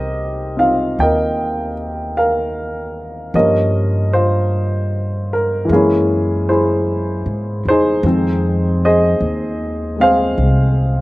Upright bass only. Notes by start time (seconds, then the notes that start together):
Already playing: C2
0.99 D#2
3.34 G2
5.69 F#2
7.26 G#2
7.65 E2
8.03 F2
9.21 D#2
10.38 C2